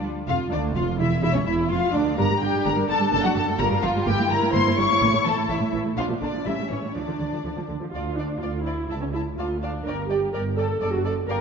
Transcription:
0.03 cello section G3
0.28 double bass section F1, cello section F2, viola section F4, violin section F4 F5
0.52 cello section D2, double bass section D2, viola section D4, violin section D4 D5
0.75 double bass section F1, cello section F2, violin section F4 F5, viola section F4
0.99 double bass section E1, cello section E2, viola section E4, violin section E4 E5
1.23 double bass section E1, cello section E2, viola section E4, violin section E4 E5
1.35 cello section C#2, violin section C#4 C#5, viola section C#4
1.46 double bass section E1, cello section E2, violin section E4 E5, viola section E4
1.70 double bass section F1, cello section F2, viola section F4, violin section F4 F5
1.94 double bass section D2, cello section D2, viola section D4, violin section D4 D5
2.18 double bass section G1, cello section G2, viola section G3 D4, violin section A#4 A#5
2.30 cello section G2, viola section G3
2.42 double bass section G1, cello section G2, viola section D3, violin section G4 G5
2.53 cello section G2, viola section G3
2.65 double bass section G1, cello section G2, viola section G3, violin section A#4 A#5
2.77 cello section G2, viola section G3
2.89 double bass section G1, cello section G2, viola section D3, violin section A4 A5
3.00 cello section G2, viola section G3
3.12 double bass section F#1, cello section F#2, viola section A3, violin section A4 A5
3.24 cello section F#2, viola section A3, violin section F#4 F#5
3.35 double bass section F#1, cello section F#2, viola section F#3, violin section A4 A5
3.48 cello section F#2, viola section A3
3.59 double bass section G1, cello section G2, viola section G3 F4, violin section A#4 A#5
3.71 cello section G2, viola section G3
3.82 double bass section G1, cello section G2, viola section F3, violin section F4 F5
3.94 cello section G2, viola section G3
4.06 double bass section G1, cello section G2, viola section A#3 E4, violin section G4 G5
4.18 cello section G2, viola section A#3
4.30 double bass section G1, cello section G2, viola section G3, violin section A#4 A#5
4.42 cello section G2, viola section A#3
4.54 double bass section G1, cello section G2, viola section A#3, violin section C5 C6
4.66 cello section G2, viola section A#3
4.78 double bass section G1, cello section G2, viola section G3, violin section C#5 C#6
4.90 cello section G2, viola section A#3
5.02 double bass section A1, cello section A2, viola section A3
5.14 cello section A2, viola section A3
5.25 double bass section A1, cello section A2, viola section E3, violin section A4 A5
5.37 cello section A2, viola section A3
5.49 double bass section A1, cello section A2, viola section A3, violin section E4 E5
5.61 cello section A2, viola section A3
5.73 double bass section A1, cello section A2, viola section E3
5.85 cello section A2, viola section A3
5.96 double bass section A#1, cello section A#2, viola section F3 D4, violin section F4 F5
6.08 cello section A#2, viola section F3
6.21 double bass section A#1, cello section A#2, viola section D3, violin section D4 D5
6.33 cello section A#2, viola section F3
6.46 double bass section A1, cello section A2, viola section G3 C#4, violin section E4 E5
6.59 cello section A2, viola section G3
6.71 double bass section A1, cello section A2, viola section E3, violin section C#4 C#5
6.82 cello section A2, viola section G3
6.95 double bass section D2, cello section D3, viola section F3 D4, violin section D4 D5
7.07 cello section D3, viola section F3
7.20 double bass section D2, viola section D3, cello section D3
7.32 cello section D3, viola section F3
7.44 double bass section D2, cello section D3, viola section F3
7.56 cello section D3, viola section F3
7.68 double bass section D2, viola section D3, cello section D3
7.81 cello section D3, viola section F3
7.93 cello section D2, double bass section D2, viola section F4, violin section D5 F5
8.17 viola section D4, violin section D5 F5
8.41 cello section D2, double bass section D2, viola section F4, violin section D5 F5
8.65 viola section E4, violin section D5 F5
8.89 cello section C#2, double bass section C#2, viola section E4, violin section E5 A5
9.02 viola section C#4
9.13 viola section E4, violin section E5 A5
9.38 double bass section D2, cello section D2, viola section F4, violin section D5 F5 A5
9.62 viola section D4, violin section D5 F5 A5
9.86 double bass section G1, cello section G2, viola section A#4, violin section D5 G5
10.10 viola section G4, violin section D5 G5
10.34 double bass section G1, cello section G2, viola section A#4, violin section D5 G5
10.57 viola section A4, violin section D5 G5
10.81 double bass section F#1, cello section F#2, viola section A4, violin section D5 A5
10.93 viola section F#4
11.05 viola section A4, violin section D5 A5
11.28 double bass section G1, cello section G2, viola section A#4, violin section D5 F5 G5

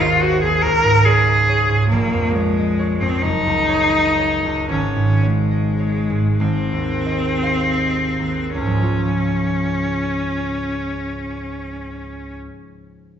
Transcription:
Already playing: harp G#1 D#2 C5
0.01 cello F4, harp C#5
0.20 cello F#4, harp C5
0.43 harp D#2, cello G#4
0.62 harp C#2, cello A#4
0.84 harp G#2
1.04 cello G#4, harp C#5
1.27 harp D#5
1.49 harp C#5
1.69 harp G#2
1.89 harp A#1, cello A#3
2.13 harp F2
2.32 cello G#3, harp C#5
2.58 harp D#5
2.79 harp C#5
3.01 harp F2, cello C4
3.22 harp F#1, cello D#4
3.46 harp C#2
3.69 harp C#5
3.93 harp D#5
4.19 harp C#5
4.44 harp C#2
4.69 harp G#1, cello C#4
4.96 harp G#2
5.23 cello G#3, harp C#5
5.51 harp D#5
5.79 harp C#5
6.10 harp G#2
6.40 harp G#1, cello C4
6.72 harp D#2
7.06 harp D#5
7.43 harp F5
7.81 harp D#5
8.19 harp D#2
8.55 harp C#2, cello C#4
8.61 harp G#2
8.66 harp F3
8.71 harp G#3
8.77 harp C#4
8.83 harp F4

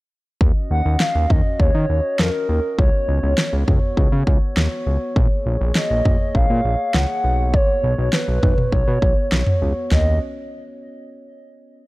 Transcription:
0.41 analog synth bass D#2, glass harmonica C#4 F#4 D#5, kick
0.71 analog synth bass D#2, soft synth lead F#5
0.85 analog synth bass D#2
1.00 soft synth lead F5, snare
1.15 analog synth bass D#2
1.30 analog synth bass D#2, soft synth lead D#5, kick, mid tom
1.60 analog synth bass D#2, soft synth lead C#5, kick
1.75 analog synth bass D#3
1.89 analog synth bass D#2
2.19 analog synth bass F2, soft synth lead A#4, snare
2.49 analog synth bass D#2
2.78 analog synth bass C#2, glass harmonica B3 C#5, soft synth lead C#5, kick
3.08 analog synth bass C#2
3.23 analog synth bass C#2
3.38 snare
3.53 analog synth bass C#2
3.68 analog synth bass C#2, kick, mid tom
3.97 analog synth bass C#2, kick
4.12 analog synth bass C#3
4.27 analog synth bass C#2, kick
4.57 analog synth bass D#2, snare
4.86 analog synth bass C#2
5.16 analog synth bass A#1, glass harmonica A#3 G#4 C#5, kick
5.46 analog synth bass A#1
5.61 analog synth bass A#1
5.75 soft synth lead D#5, snare
5.90 analog synth bass A#1
6.05 analog synth bass A#1, kick, mid tom
6.35 analog synth bass A#1, soft synth lead F5, kick
6.50 analog synth bass A#2
6.65 analog synth bass A#1
6.94 analog synth bass C#2, soft synth lead F#5, snare
7.24 analog synth bass B1, glass harmonica B3 F#4
7.54 soft synth lead C#5, kick
7.84 analog synth bass B1
7.98 analog synth bass B1
8.13 soft synth lead B4, snare
8.28 analog synth bass B1
8.43 analog synth bass B1, kick, mid tom
8.58 mid tom
8.72 analog synth bass B1, soft synth lead C#5, kick
8.88 analog synth bass B2
9.02 analog synth bass B1, kick
9.32 analog synth bass B1, snare
9.47 mid tom
9.62 analog synth bass C#2
9.91 analog synth bass D#2, glass harmonica C#4 F#4 D#5, soft synth lead D#5, snare, floor tom

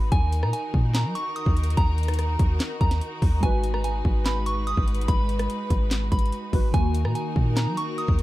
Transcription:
Already playing: 808-style bass G#1, string section D#4 F#4
0.12 808-style bass D#2, string section D#3 A#4, synth bell G#5, kick, closed hi-hat
0.32 closed hi-hat
0.43 808-style bass A#2, synth bell A#5, cross-stick
0.53 synth bell G#5, closed hi-hat
0.74 808-style bass A#2, kick
0.95 synth bell A#5, snare, clap, closed hi-hat
1.05 808-style bass F#3
1.15 synth bell C#6, closed hi-hat
1.36 synth bell D#6, closed hi-hat
1.46 808-style bass D#2, kick
1.57 closed hi-hat
1.64 closed hi-hat
1.70 closed hi-hat
1.77 808-style bass D#2, synth bell A#5, kick, closed hi-hat
1.98 closed hi-hat
2.03 closed hi-hat
2.08 cross-stick, closed hi-hat
2.14 closed hi-hat
2.19 cross-stick, closed hi-hat
2.39 808-style bass D#2, kick, closed hi-hat
2.60 snare, clap, closed hi-hat
2.81 808-style bass D#2, synth bell A#5, kick, closed hi-hat
2.91 snare, closed hi-hat
3.01 closed hi-hat
3.22 808-style bass D#2, kick, open hi-hat
3.40 808-style bass G#1, synth keys G#3 F#4, string section G#3 B4, synth bell G#5, kick, closed hi-hat
3.45 synth keys B4
3.64 closed hi-hat
3.74 synth bell A#5, cross-stick
3.84 synth bell G#5, closed hi-hat
4.05 808-style bass G#1, kick
4.25 synth bell B5, snare, clap, closed hi-hat
4.46 synth bell C#6, closed hi-hat
4.67 synth bell D#6, closed hi-hat
4.77 808-style bass G#1, kick
4.88 closed hi-hat
4.95 closed hi-hat
5.01 closed hi-hat
5.08 808-style bass G#1, synth bell B5, kick, closed hi-hat
5.29 closed hi-hat
5.39 cross-stick, closed hi-hat
5.50 closed hi-hat
5.70 808-style bass G#1, kick, closed hi-hat
5.91 snare, clap, closed hi-hat
6.12 808-style bass G#1, synth bell B5, kick, closed hi-hat
6.19 closed hi-hat
6.26 closed hi-hat
6.32 closed hi-hat
6.52 808-style bass G#1, synth keys G#3 F#4 B4, kick, open hi-hat
6.71 808-style bass D#2, synth keys D#3 A#3, string section D#3 D#4 F#4 A#4, synth bell G#5, kick, closed hi-hat
6.76 synth keys F#4
6.95 closed hi-hat
7.05 808-style bass A#2, synth bell A#5, cross-stick
7.15 synth bell G#5, closed hi-hat
7.36 808-style bass A#2, kick
7.57 synth bell A#5, snare, clap, closed hi-hat
7.67 808-style bass F#3
7.77 synth bell C#6, closed hi-hat
7.98 synth bell D#6, closed hi-hat
8.08 808-style bass D#2, kick
8.19 closed hi-hat

